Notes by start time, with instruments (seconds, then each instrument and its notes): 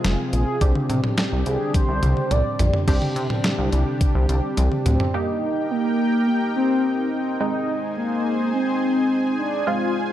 Already playing: analog synth pad C3 F3 G#3 F4 G#4, analog polysynth C4 F4 G#4
0.04 analog synth bass F1, snare, closed hi-hat
0.33 analog synth bass A#1, soft synth lead G#4, closed hi-hat
0.61 analog synth bass C2, analog synth pad D3 G3 D4 G4, analog polysynth C4 D4 G4, kick, closed hi-hat
0.75 mid tom
0.90 analog synth bass C3, closed hi-hat, mid tom
1.04 mid tom
1.18 snare, closed hi-hat
1.32 analog synth bass C2
1.46 analog synth bass C2, soft synth lead G#4, closed hi-hat
1.74 soft synth lead C5, kick, closed hi-hat, high tom
1.89 analog synth bass C2
2.03 analog synth bass C2, closed hi-hat, mid tom
2.17 mid tom
2.31 analog synth bass C2, soft synth lead D5, closed hi-hat, mid tom
2.59 analog synth bass A#1, closed hi-hat, floor tom
2.73 floor tom
2.88 analog synth bass C2, analog synth pad C3 D3 G3 D4 G4, analog polysynth C4 D4 G4, kick, closed hi-hat, crash
3.02 mid tom
3.16 analog synth bass C3, closed hi-hat
3.30 mid tom
3.44 snare, closed hi-hat
3.58 analog synth bass C2
3.73 analog synth bass C2, closed hi-hat
4.01 kick, closed hi-hat
4.15 analog synth bass C2
4.29 analog synth bass C2, closed hi-hat
4.57 analog synth bass C2, closed hi-hat, high tom
4.72 mid tom
4.86 analog synth bass D2, soft synth lead C4, closed hi-hat, mid tom
5.00 floor tom
5.14 analog polysynth A#3 D#4 G4, analog synth pad D#4 G4 A#4 G5, soft synth lead D#4
5.71 soft synth lead A#3
6.27 soft synth lead A#3
6.56 soft synth lead C4
7.12 soft synth lead C4
7.41 analog polysynth G#3 C4 D#4, soft synth lead D#4, analog synth pad G#4 C5 G#5
7.97 soft synth lead A#3
8.54 soft synth lead C4
9.39 soft synth lead D4
9.67 analog polysynth G#3 C4 F4, analog synth pad F4 C5, soft synth lead F4